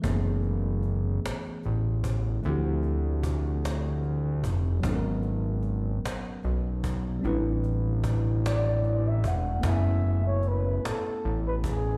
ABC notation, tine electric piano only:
X:1
M:6/8
L:1/8
Q:3/8=50
K:G#phr
V:1 name="Tine electric piano"
[E,A,B,CG]6 | [E,=F,A,=CE=G]6 | [F,B,CDA^A]6 | [=G,=C=DEB]6 |
[A,B,CEg]6 |]